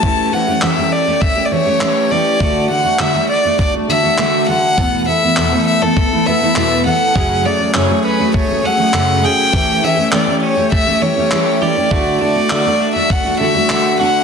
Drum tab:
CP |--x---x-|--x---x-|--x---x-|--x---x-|
BD |o---o---|o---o---|o---o---|o---o---|

CP |--x---x-|--x---x-|
BD |o---o---|o---o---|